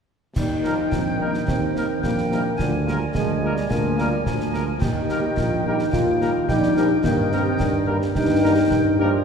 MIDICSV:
0, 0, Header, 1, 8, 480
1, 0, Start_track
1, 0, Key_signature, -3, "major"
1, 0, Tempo, 556586
1, 314, Time_signature, 2, 2, 24, 8
1, 7971, End_track
2, 0, Start_track
2, 0, Title_t, "Woodwind section"
2, 0, Program_c, 0, 71
2, 307, Note_on_c, 0, 70, 68
2, 310, Note_on_c, 0, 79, 65
2, 1715, Note_off_c, 0, 70, 0
2, 1716, Note_off_c, 0, 79, 0
2, 1741, Note_on_c, 0, 79, 60
2, 1747, Note_on_c, 0, 70, 59
2, 2193, Note_off_c, 0, 79, 0
2, 2196, Note_off_c, 0, 70, 0
2, 2217, Note_on_c, 0, 80, 61
2, 2221, Note_on_c, 0, 70, 61
2, 2670, Note_off_c, 0, 80, 0
2, 2673, Note_off_c, 0, 70, 0
2, 2707, Note_on_c, 0, 70, 60
2, 2709, Note_on_c, 0, 80, 56
2, 3156, Note_off_c, 0, 70, 0
2, 3157, Note_off_c, 0, 80, 0
2, 3188, Note_on_c, 0, 70, 65
2, 3189, Note_on_c, 0, 80, 69
2, 4115, Note_off_c, 0, 70, 0
2, 4116, Note_off_c, 0, 80, 0
2, 4140, Note_on_c, 0, 70, 69
2, 4142, Note_on_c, 0, 79, 73
2, 5551, Note_off_c, 0, 70, 0
2, 5586, Note_off_c, 0, 79, 0
2, 5594, Note_on_c, 0, 70, 63
2, 5596, Note_on_c, 0, 79, 64
2, 6039, Note_off_c, 0, 70, 0
2, 6040, Note_off_c, 0, 79, 0
2, 6074, Note_on_c, 0, 70, 74
2, 6079, Note_on_c, 0, 79, 70
2, 6890, Note_off_c, 0, 70, 0
2, 6890, Note_off_c, 0, 79, 0
2, 7037, Note_on_c, 0, 79, 75
2, 7041, Note_on_c, 0, 70, 73
2, 7960, Note_off_c, 0, 79, 0
2, 7962, Note_off_c, 0, 70, 0
2, 7971, End_track
3, 0, Start_track
3, 0, Title_t, "Trumpet section"
3, 0, Program_c, 1, 61
3, 553, Note_on_c, 1, 70, 55
3, 639, Note_off_c, 1, 70, 0
3, 1041, Note_on_c, 1, 70, 49
3, 1126, Note_off_c, 1, 70, 0
3, 1523, Note_on_c, 1, 70, 50
3, 1607, Note_off_c, 1, 70, 0
3, 2002, Note_on_c, 1, 70, 54
3, 2087, Note_off_c, 1, 70, 0
3, 2480, Note_on_c, 1, 70, 54
3, 2565, Note_off_c, 1, 70, 0
3, 2966, Note_on_c, 1, 70, 52
3, 3049, Note_off_c, 1, 70, 0
3, 3435, Note_on_c, 1, 70, 53
3, 3521, Note_off_c, 1, 70, 0
3, 3911, Note_on_c, 1, 70, 54
3, 3998, Note_off_c, 1, 70, 0
3, 4398, Note_on_c, 1, 70, 58
3, 4483, Note_off_c, 1, 70, 0
3, 4885, Note_on_c, 1, 70, 54
3, 4969, Note_off_c, 1, 70, 0
3, 5355, Note_on_c, 1, 70, 56
3, 5440, Note_off_c, 1, 70, 0
3, 5834, Note_on_c, 1, 70, 54
3, 5920, Note_off_c, 1, 70, 0
3, 6317, Note_on_c, 1, 70, 58
3, 6402, Note_off_c, 1, 70, 0
3, 6788, Note_on_c, 1, 70, 58
3, 6875, Note_off_c, 1, 70, 0
3, 7277, Note_on_c, 1, 70, 60
3, 7362, Note_off_c, 1, 70, 0
3, 7758, Note_on_c, 1, 70, 63
3, 7843, Note_off_c, 1, 70, 0
3, 7971, End_track
4, 0, Start_track
4, 0, Title_t, "Euphonium"
4, 0, Program_c, 2, 58
4, 315, Note_on_c, 2, 63, 88
4, 805, Note_on_c, 2, 60, 86
4, 818, Note_off_c, 2, 63, 0
4, 1034, Note_on_c, 2, 58, 69
4, 1047, Note_off_c, 2, 60, 0
4, 1274, Note_off_c, 2, 58, 0
4, 1280, Note_on_c, 2, 60, 82
4, 1723, Note_off_c, 2, 60, 0
4, 1757, Note_on_c, 2, 58, 86
4, 2201, Note_off_c, 2, 58, 0
4, 2240, Note_on_c, 2, 53, 76
4, 2346, Note_off_c, 2, 53, 0
4, 2469, Note_on_c, 2, 55, 65
4, 2578, Note_off_c, 2, 55, 0
4, 2707, Note_on_c, 2, 56, 82
4, 3156, Note_off_c, 2, 56, 0
4, 3193, Note_on_c, 2, 58, 82
4, 3878, Note_off_c, 2, 58, 0
4, 4151, Note_on_c, 2, 67, 90
4, 4634, Note_on_c, 2, 65, 90
4, 4647, Note_off_c, 2, 67, 0
4, 4864, Note_off_c, 2, 65, 0
4, 4869, Note_on_c, 2, 63, 81
4, 5094, Note_off_c, 2, 63, 0
4, 5113, Note_on_c, 2, 65, 102
4, 5559, Note_off_c, 2, 65, 0
4, 5592, Note_on_c, 2, 63, 94
4, 6038, Note_off_c, 2, 63, 0
4, 6073, Note_on_c, 2, 58, 88
4, 6295, Note_off_c, 2, 58, 0
4, 6319, Note_on_c, 2, 60, 82
4, 6560, Note_on_c, 2, 62, 96
4, 6573, Note_off_c, 2, 60, 0
4, 7033, Note_off_c, 2, 62, 0
4, 7038, Note_on_c, 2, 63, 101
4, 7720, Note_off_c, 2, 63, 0
4, 7757, Note_on_c, 2, 62, 87
4, 7971, Note_off_c, 2, 62, 0
4, 7971, End_track
5, 0, Start_track
5, 0, Title_t, "French horn section"
5, 0, Program_c, 3, 60
5, 555, Note_on_c, 3, 58, 50
5, 557, Note_on_c, 3, 55, 51
5, 557, Note_on_c, 3, 63, 47
5, 641, Note_off_c, 3, 58, 0
5, 642, Note_off_c, 3, 55, 0
5, 642, Note_off_c, 3, 63, 0
5, 1038, Note_on_c, 3, 58, 50
5, 1038, Note_on_c, 3, 63, 55
5, 1039, Note_on_c, 3, 55, 52
5, 1123, Note_off_c, 3, 63, 0
5, 1124, Note_off_c, 3, 55, 0
5, 1124, Note_off_c, 3, 58, 0
5, 1513, Note_on_c, 3, 55, 50
5, 1515, Note_on_c, 3, 63, 50
5, 1517, Note_on_c, 3, 58, 54
5, 1599, Note_off_c, 3, 55, 0
5, 1601, Note_off_c, 3, 63, 0
5, 1603, Note_off_c, 3, 58, 0
5, 1986, Note_on_c, 3, 63, 51
5, 1988, Note_on_c, 3, 55, 53
5, 1989, Note_on_c, 3, 58, 56
5, 2074, Note_off_c, 3, 63, 0
5, 2075, Note_off_c, 3, 55, 0
5, 2076, Note_off_c, 3, 58, 0
5, 2465, Note_on_c, 3, 58, 48
5, 2466, Note_on_c, 3, 65, 50
5, 2468, Note_on_c, 3, 56, 54
5, 2553, Note_off_c, 3, 58, 0
5, 2554, Note_off_c, 3, 65, 0
5, 2555, Note_off_c, 3, 56, 0
5, 2954, Note_on_c, 3, 56, 51
5, 2956, Note_on_c, 3, 58, 52
5, 2957, Note_on_c, 3, 65, 50
5, 3040, Note_off_c, 3, 56, 0
5, 3042, Note_off_c, 3, 58, 0
5, 3042, Note_off_c, 3, 65, 0
5, 3430, Note_on_c, 3, 58, 51
5, 3430, Note_on_c, 3, 65, 55
5, 3434, Note_on_c, 3, 56, 53
5, 3517, Note_off_c, 3, 58, 0
5, 3517, Note_off_c, 3, 65, 0
5, 3520, Note_off_c, 3, 56, 0
5, 3915, Note_on_c, 3, 65, 53
5, 3916, Note_on_c, 3, 56, 58
5, 3916, Note_on_c, 3, 58, 58
5, 4001, Note_off_c, 3, 65, 0
5, 4002, Note_off_c, 3, 56, 0
5, 4002, Note_off_c, 3, 58, 0
5, 4389, Note_on_c, 3, 55, 54
5, 4390, Note_on_c, 3, 58, 54
5, 4392, Note_on_c, 3, 67, 57
5, 4476, Note_off_c, 3, 55, 0
5, 4477, Note_off_c, 3, 58, 0
5, 4479, Note_off_c, 3, 67, 0
5, 4875, Note_on_c, 3, 58, 57
5, 4876, Note_on_c, 3, 55, 56
5, 4878, Note_on_c, 3, 67, 59
5, 4961, Note_off_c, 3, 58, 0
5, 4962, Note_off_c, 3, 55, 0
5, 4963, Note_off_c, 3, 67, 0
5, 5360, Note_on_c, 3, 55, 54
5, 5360, Note_on_c, 3, 58, 56
5, 5362, Note_on_c, 3, 67, 58
5, 5444, Note_off_c, 3, 58, 0
5, 5445, Note_off_c, 3, 55, 0
5, 5446, Note_off_c, 3, 67, 0
5, 5835, Note_on_c, 3, 55, 59
5, 5835, Note_on_c, 3, 58, 62
5, 5838, Note_on_c, 3, 67, 58
5, 5920, Note_off_c, 3, 55, 0
5, 5921, Note_off_c, 3, 58, 0
5, 5923, Note_off_c, 3, 67, 0
5, 6321, Note_on_c, 3, 55, 58
5, 6321, Note_on_c, 3, 58, 60
5, 6321, Note_on_c, 3, 67, 59
5, 6405, Note_off_c, 3, 55, 0
5, 6405, Note_off_c, 3, 67, 0
5, 6406, Note_off_c, 3, 58, 0
5, 6794, Note_on_c, 3, 67, 62
5, 6797, Note_on_c, 3, 55, 64
5, 6797, Note_on_c, 3, 58, 62
5, 6880, Note_off_c, 3, 67, 0
5, 6882, Note_off_c, 3, 55, 0
5, 6882, Note_off_c, 3, 58, 0
5, 7272, Note_on_c, 3, 67, 61
5, 7275, Note_on_c, 3, 55, 60
5, 7275, Note_on_c, 3, 58, 57
5, 7358, Note_off_c, 3, 67, 0
5, 7360, Note_off_c, 3, 55, 0
5, 7361, Note_off_c, 3, 58, 0
5, 7748, Note_on_c, 3, 58, 65
5, 7748, Note_on_c, 3, 67, 60
5, 7749, Note_on_c, 3, 55, 63
5, 7835, Note_off_c, 3, 67, 0
5, 7836, Note_off_c, 3, 55, 0
5, 7836, Note_off_c, 3, 58, 0
5, 7971, End_track
6, 0, Start_track
6, 0, Title_t, "Trombone section"
6, 0, Program_c, 4, 61
6, 314, Note_on_c, 4, 55, 59
6, 422, Note_off_c, 4, 55, 0
6, 540, Note_on_c, 4, 53, 59
6, 770, Note_off_c, 4, 53, 0
6, 779, Note_on_c, 4, 51, 72
6, 1746, Note_off_c, 4, 51, 0
6, 1751, Note_on_c, 4, 55, 65
6, 1859, Note_off_c, 4, 55, 0
6, 1992, Note_on_c, 4, 48, 58
6, 2101, Note_off_c, 4, 48, 0
6, 2231, Note_on_c, 4, 50, 55
6, 2678, Note_off_c, 4, 50, 0
6, 2722, Note_on_c, 4, 53, 65
6, 2941, Note_off_c, 4, 53, 0
6, 2959, Note_on_c, 4, 55, 65
6, 3196, Note_off_c, 4, 55, 0
6, 3199, Note_on_c, 4, 53, 64
6, 3419, Note_off_c, 4, 53, 0
6, 3436, Note_on_c, 4, 55, 65
6, 3657, Note_off_c, 4, 55, 0
6, 3672, Note_on_c, 4, 53, 70
6, 4145, Note_on_c, 4, 51, 75
6, 4152, Note_off_c, 4, 53, 0
6, 5554, Note_off_c, 4, 51, 0
6, 5592, Note_on_c, 4, 55, 71
6, 5815, Note_off_c, 4, 55, 0
6, 5831, Note_on_c, 4, 53, 68
6, 5939, Note_off_c, 4, 53, 0
6, 6077, Note_on_c, 4, 51, 79
6, 7000, Note_off_c, 4, 51, 0
6, 7049, Note_on_c, 4, 46, 66
6, 7280, Note_off_c, 4, 46, 0
6, 7288, Note_on_c, 4, 50, 65
6, 7393, Note_off_c, 4, 50, 0
6, 7518, Note_on_c, 4, 51, 65
6, 7738, Note_off_c, 4, 51, 0
6, 7760, Note_on_c, 4, 53, 76
6, 7971, Note_off_c, 4, 53, 0
6, 7971, End_track
7, 0, Start_track
7, 0, Title_t, "Tuba"
7, 0, Program_c, 5, 58
7, 314, Note_on_c, 5, 39, 67
7, 714, Note_off_c, 5, 39, 0
7, 789, Note_on_c, 5, 34, 61
7, 1191, Note_off_c, 5, 34, 0
7, 1271, Note_on_c, 5, 39, 66
7, 1672, Note_off_c, 5, 39, 0
7, 1746, Note_on_c, 5, 34, 64
7, 2149, Note_off_c, 5, 34, 0
7, 2229, Note_on_c, 5, 38, 74
7, 2631, Note_off_c, 5, 38, 0
7, 2717, Note_on_c, 5, 38, 65
7, 3114, Note_off_c, 5, 38, 0
7, 3187, Note_on_c, 5, 38, 70
7, 3590, Note_off_c, 5, 38, 0
7, 3669, Note_on_c, 5, 38, 60
7, 4070, Note_off_c, 5, 38, 0
7, 4150, Note_on_c, 5, 39, 70
7, 4551, Note_off_c, 5, 39, 0
7, 4633, Note_on_c, 5, 34, 62
7, 5032, Note_off_c, 5, 34, 0
7, 5111, Note_on_c, 5, 39, 73
7, 5511, Note_off_c, 5, 39, 0
7, 5584, Note_on_c, 5, 34, 63
7, 5987, Note_off_c, 5, 34, 0
7, 6068, Note_on_c, 5, 43, 75
7, 6469, Note_off_c, 5, 43, 0
7, 6553, Note_on_c, 5, 43, 74
7, 6952, Note_off_c, 5, 43, 0
7, 7030, Note_on_c, 5, 43, 85
7, 7430, Note_off_c, 5, 43, 0
7, 7509, Note_on_c, 5, 43, 76
7, 7910, Note_off_c, 5, 43, 0
7, 7971, End_track
8, 0, Start_track
8, 0, Title_t, "Drums"
8, 312, Note_on_c, 9, 35, 73
8, 312, Note_on_c, 9, 38, 67
8, 312, Note_on_c, 9, 49, 45
8, 398, Note_off_c, 9, 35, 0
8, 398, Note_off_c, 9, 38, 0
8, 398, Note_off_c, 9, 49, 0
8, 555, Note_on_c, 9, 38, 50
8, 641, Note_off_c, 9, 38, 0
8, 793, Note_on_c, 9, 35, 70
8, 793, Note_on_c, 9, 38, 69
8, 880, Note_off_c, 9, 35, 0
8, 880, Note_off_c, 9, 38, 0
8, 1154, Note_on_c, 9, 38, 49
8, 1240, Note_off_c, 9, 38, 0
8, 1277, Note_on_c, 9, 35, 78
8, 1277, Note_on_c, 9, 38, 69
8, 1363, Note_off_c, 9, 35, 0
8, 1363, Note_off_c, 9, 38, 0
8, 1518, Note_on_c, 9, 38, 51
8, 1605, Note_off_c, 9, 38, 0
8, 1755, Note_on_c, 9, 35, 71
8, 1755, Note_on_c, 9, 38, 70
8, 1841, Note_off_c, 9, 35, 0
8, 1841, Note_off_c, 9, 38, 0
8, 1878, Note_on_c, 9, 38, 48
8, 1964, Note_off_c, 9, 38, 0
8, 1998, Note_on_c, 9, 38, 52
8, 2084, Note_off_c, 9, 38, 0
8, 2235, Note_on_c, 9, 35, 72
8, 2235, Note_on_c, 9, 38, 68
8, 2321, Note_off_c, 9, 35, 0
8, 2321, Note_off_c, 9, 38, 0
8, 2480, Note_on_c, 9, 38, 49
8, 2566, Note_off_c, 9, 38, 0
8, 2715, Note_on_c, 9, 35, 73
8, 2715, Note_on_c, 9, 38, 71
8, 2801, Note_off_c, 9, 35, 0
8, 2801, Note_off_c, 9, 38, 0
8, 3076, Note_on_c, 9, 38, 51
8, 3162, Note_off_c, 9, 38, 0
8, 3196, Note_on_c, 9, 35, 74
8, 3196, Note_on_c, 9, 38, 72
8, 3282, Note_off_c, 9, 35, 0
8, 3282, Note_off_c, 9, 38, 0
8, 3437, Note_on_c, 9, 38, 52
8, 3523, Note_off_c, 9, 38, 0
8, 3677, Note_on_c, 9, 35, 69
8, 3677, Note_on_c, 9, 38, 73
8, 3763, Note_off_c, 9, 35, 0
8, 3763, Note_off_c, 9, 38, 0
8, 3797, Note_on_c, 9, 38, 48
8, 3883, Note_off_c, 9, 38, 0
8, 3916, Note_on_c, 9, 38, 51
8, 4002, Note_off_c, 9, 38, 0
8, 4155, Note_on_c, 9, 35, 76
8, 4155, Note_on_c, 9, 38, 69
8, 4155, Note_on_c, 9, 49, 30
8, 4241, Note_off_c, 9, 35, 0
8, 4241, Note_off_c, 9, 38, 0
8, 4241, Note_off_c, 9, 49, 0
8, 4390, Note_on_c, 9, 38, 51
8, 4476, Note_off_c, 9, 38, 0
8, 4633, Note_on_c, 9, 35, 74
8, 4633, Note_on_c, 9, 38, 72
8, 4719, Note_off_c, 9, 35, 0
8, 4719, Note_off_c, 9, 38, 0
8, 4992, Note_on_c, 9, 38, 52
8, 5079, Note_off_c, 9, 38, 0
8, 5115, Note_on_c, 9, 35, 79
8, 5115, Note_on_c, 9, 38, 72
8, 5201, Note_off_c, 9, 35, 0
8, 5201, Note_off_c, 9, 38, 0
8, 5357, Note_on_c, 9, 38, 50
8, 5443, Note_off_c, 9, 38, 0
8, 5594, Note_on_c, 9, 35, 76
8, 5594, Note_on_c, 9, 38, 75
8, 5681, Note_off_c, 9, 35, 0
8, 5681, Note_off_c, 9, 38, 0
8, 5715, Note_on_c, 9, 38, 53
8, 5801, Note_off_c, 9, 38, 0
8, 5837, Note_on_c, 9, 38, 54
8, 5923, Note_off_c, 9, 38, 0
8, 6071, Note_on_c, 9, 35, 80
8, 6071, Note_on_c, 9, 38, 75
8, 6157, Note_off_c, 9, 35, 0
8, 6157, Note_off_c, 9, 38, 0
8, 6312, Note_on_c, 9, 38, 51
8, 6398, Note_off_c, 9, 38, 0
8, 6553, Note_on_c, 9, 35, 74
8, 6553, Note_on_c, 9, 38, 70
8, 6639, Note_off_c, 9, 35, 0
8, 6639, Note_off_c, 9, 38, 0
8, 6913, Note_on_c, 9, 38, 55
8, 6999, Note_off_c, 9, 38, 0
8, 7030, Note_on_c, 9, 35, 79
8, 7030, Note_on_c, 9, 38, 63
8, 7117, Note_off_c, 9, 35, 0
8, 7117, Note_off_c, 9, 38, 0
8, 7511, Note_on_c, 9, 35, 76
8, 7511, Note_on_c, 9, 38, 70
8, 7597, Note_off_c, 9, 35, 0
8, 7597, Note_off_c, 9, 38, 0
8, 7971, End_track
0, 0, End_of_file